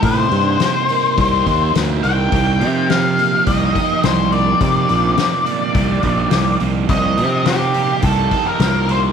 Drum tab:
HH |oooooooo|oooooooo|oooooooo|oooooooo|
SD |--o---o-|--o---o-|--o---o-|--o---o-|
BD |o---oo--|o---oo--|o---oo--|o---oo--|